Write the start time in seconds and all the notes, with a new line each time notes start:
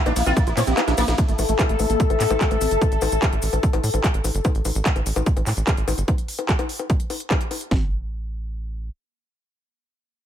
Already playing: E4
0.06 A#1 A#3 D4, closed hi-hat, high bongo
0.16 A#1 A#3 E4, open hi-hat, ride, maracas
0.26 A#1 C4 F4, closed hi-hat, high bongo, maracas
0.37 A#3, kick, closed hi-hat, maracas
0.47 A#1 A#3 F4, closed hi-hat
0.57 A#2 A#3 C4, clap, open hi-hat, ride, high bongo, maracas
0.67 A#1 A#3 C4 G4, closed hi-hat, maracas
0.77 A#3, clap, closed hi-hat, high bongo, maracas
0.88 A#1 A#3 D4, snare, closed hi-hat
0.97 A#1 A#3, snare, open hi-hat, ride, high bongo, maracas
1.07 A#1 A#3 F4, snare, closed hi-hat, maracas
1.18 A3 A4, kick, closed hi-hat, maracas
1.28 A1 A3, closed hi-hat
1.35 A1 A3 E5, open hi-hat, high bongo, maracas
1.49 A1 A3, closed hi-hat, maracas
1.59 E4, kick, clap, closed hi-hat, high bongo, maracas
1.69 A1 A3, closed hi-hat
1.79 A1 A3, open hi-hat, high bongo, maracas
1.86 A1 A#3 A5, closed hi-hat, maracas
2.00 A3, kick, closed hi-hat, maracas
2.10 A1 E4, closed hi-hat, high bongo
2.20 A2 A3, clap, open hi-hat, maracas
2.30 A1 A3, closed hi-hat, high bongo, maracas
2.41 G3, kick, clap, closed hi-hat, maracas
2.51 A1 A3, closed hi-hat, high bongo
2.61 A1 C4, open hi-hat, maracas
2.71 G1 A3, closed hi-hat, maracas
2.82 kick, closed hi-hat, high bongo, maracas
2.92 A1, closed hi-hat
3.01 A1, open hi-hat, high bongo, maracas
3.12 A1, closed hi-hat, maracas
3.22 kick, clap, closed hi-hat, high bongo, maracas
3.33 A1, closed hi-hat
3.42 A1, open hi-hat, maracas
3.53 A1, closed hi-hat, high bongo, maracas
3.63 kick, closed hi-hat, maracas
3.73 A1, closed hi-hat, high bongo
3.84 A2, open hi-hat, maracas
3.94 A1, closed hi-hat, high bongo, maracas
4.04 kick, clap, closed hi-hat, maracas
4.14 A1, closed hi-hat
4.24 A1, open hi-hat, high bongo, maracas
4.35 G1, closed hi-hat, maracas
4.44 kick, closed hi-hat, high bongo, maracas
4.55 A1, closed hi-hat
4.65 A1, open hi-hat, high bongo, maracas
4.75 A1, closed hi-hat, maracas
4.86 kick, clap, closed hi-hat, maracas
4.96 A1, closed hi-hat, high bongo
5.06 A1, open hi-hat, maracas
5.16 A1, closed hi-hat, high bongo, maracas
5.26 kick, closed hi-hat, maracas
5.37 A1, closed hi-hat, high bongo
5.46 A2, clap, open hi-hat, maracas
5.57 A1, closed hi-hat, maracas
5.67 kick, clap, closed hi-hat, high bongo, maracas
5.77 A1, closed hi-hat
5.88 A1, open hi-hat, high bongo, maracas
5.98 G1, closed hi-hat, maracas
6.08 kick, closed hi-hat, high bongo
6.18 closed hi-hat
6.28 open hi-hat
6.39 closed hi-hat, high bongo
6.49 kick, clap, closed hi-hat
6.59 closed hi-hat, high bongo
6.69 open hi-hat
6.79 closed hi-hat, high bongo
6.90 kick, closed hi-hat
7.00 closed hi-hat
7.10 open hi-hat, high bongo
7.20 closed hi-hat
7.30 kick, clap, closed hi-hat, high bongo
7.41 closed hi-hat
7.51 open hi-hat, high bongo
7.61 closed hi-hat
7.71 A1, kick, snare